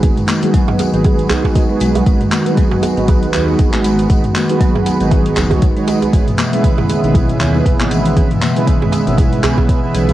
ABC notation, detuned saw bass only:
X:1
M:4/4
L:1/16
Q:"Swing 16ths" 1/4=118
K:G#m
V:1 name="Detuned saw bass" clef=bass
G,,, z6 G,,,3 z4 B,,,2 | G,,, z6 G,,,3 D,,2 F,,, G,,,3 | G,,, z6 G,,,3 F,,, D,, G,,, z3 | G,,, z6 G,,,3 D,,2 F,,, G,,,3 |
G,,, z6 G,,,3 z4 B,,,2 |]